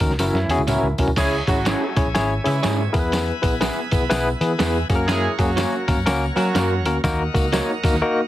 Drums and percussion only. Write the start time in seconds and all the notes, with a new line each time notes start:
0.00 kick, tambourine
0.10 snare
0.19 snare, closed hi-hat, tambourine
0.35 snare
0.49 closed hi-hat, tambourine
0.58 high tom
0.67 closed hi-hat, mid tom, tambourine
0.98 closed hi-hat, floor tom, tambourine
1.08 floor tom
1.16 kick, snare, closed hi-hat, crash, tambourine
1.47 kick, closed hi-hat, tambourine
1.65 snare, closed hi-hat, tambourine
1.96 kick, closed hi-hat, tambourine
2.15 snare, closed hi-hat, tambourine
2.46 closed hi-hat, tambourine
2.63 snare, closed hi-hat, tambourine
2.94 kick, closed hi-hat, tambourine
3.12 snare, closed hi-hat, tambourine
3.43 kick, closed hi-hat, tambourine
3.61 snare, closed hi-hat, tambourine
3.91 kick, closed hi-hat, tambourine
4.11 snare, closed hi-hat, tambourine
4.41 closed hi-hat, tambourine
4.59 snare, closed hi-hat, tambourine
4.90 kick, closed hi-hat, tambourine
5.08 snare, closed hi-hat, tambourine
5.39 kick, closed hi-hat, tambourine
5.57 snare, closed hi-hat, tambourine
5.88 kick, closed hi-hat, tambourine
6.06 snare, closed hi-hat, tambourine
6.37 closed hi-hat, tambourine
6.55 snare, closed hi-hat, tambourine
6.86 closed hi-hat, tambourine
7.04 kick, snare, closed hi-hat, tambourine
7.35 kick, closed hi-hat, tambourine
7.53 snare, closed hi-hat, tambourine
7.84 kick, closed hi-hat, tambourine
7.94 snare